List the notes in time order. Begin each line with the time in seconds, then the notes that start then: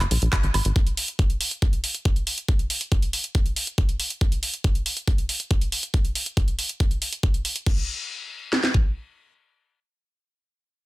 0.00 F#1, clap, closed hi-hat, high woodblock
0.11 A#1, open hi-hat
0.22 A#1, closed hi-hat
0.33 kick, clap, closed hi-hat, high woodblock
0.43 G#1, closed hi-hat
0.54 G#1, open hi-hat, high woodblock
0.65 G#1, closed hi-hat
0.76 kick, closed hi-hat
0.87 closed hi-hat
0.97 open hi-hat
1.08 closed hi-hat
1.19 kick, closed hi-hat
1.30 closed hi-hat
1.41 open hi-hat
1.51 closed hi-hat
1.62 kick, closed hi-hat
1.73 closed hi-hat
1.84 open hi-hat
1.95 closed hi-hat
2.05 kick, closed hi-hat
2.16 closed hi-hat
2.27 open hi-hat
2.38 closed hi-hat
2.48 kick, closed hi-hat
2.59 closed hi-hat
2.70 open hi-hat
2.81 closed hi-hat
2.92 kick, closed hi-hat
3.02 closed hi-hat
3.13 open hi-hat
3.24 closed hi-hat
3.35 kick, closed hi-hat
3.46 closed hi-hat
3.56 open hi-hat
3.67 closed hi-hat
3.78 kick, closed hi-hat
3.89 closed hi-hat
4.00 open hi-hat
4.10 closed hi-hat
4.21 kick, closed hi-hat
4.32 closed hi-hat
4.43 open hi-hat
4.54 closed hi-hat
4.64 kick, closed hi-hat
4.75 closed hi-hat
4.86 open hi-hat
4.97 closed hi-hat
5.08 kick, closed hi-hat
5.18 closed hi-hat
5.29 open hi-hat
5.40 closed hi-hat
5.51 kick, closed hi-hat
5.61 closed hi-hat
5.72 open hi-hat
5.83 closed hi-hat
5.94 kick, closed hi-hat
6.05 closed hi-hat
6.15 open hi-hat
6.26 closed hi-hat
6.37 kick, closed hi-hat
6.48 closed hi-hat
6.59 open hi-hat
6.69 closed hi-hat
6.80 kick, closed hi-hat
6.91 closed hi-hat
7.02 open hi-hat
7.13 closed hi-hat
7.23 kick, closed hi-hat
7.34 closed hi-hat
7.45 open hi-hat
7.56 closed hi-hat
7.66 kick, crash
8.53 snare
8.64 snare
8.74 kick